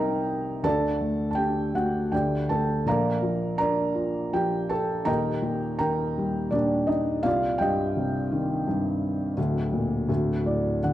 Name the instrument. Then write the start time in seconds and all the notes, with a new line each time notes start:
felt piano
Already playing: C2 C3 G3 D#4 G4 A#4 C5 D#5 G5 A#5
0.63 D2 D3 A4 D5 A5
1.01 A3
1.31 A5
1.35 D4 G4 G5
1.74 A3 F#4 F#5
2.12 D2 D3 G4 D5 G5
2.49 A3 A4 A5
2.86 A#1 A#2 A#4 D5 F5 A#5
3.22 F3
3.58 D4 A#4 D5 A#5
3.95 F4
4.33 F3 G4 G5
4.69 A4 A5
5.05 D#1 D#2 A#4 D#5 G5 A#5
5.42 A#2
5.79 D#3 A#4 G5 A#5
6.18 G3
6.51 A#2 D4 D5
6.87 D#4 D#5
7.23 C2 F4 D5 F5
7.58 G2 G4 D#5 G5
7.97 C3
8.32 D#3
8.68 G2
9.37 D1 D2
9.73 A#2
10.09 D1 D2
10.46 A2 D5
10.83 D3 F#5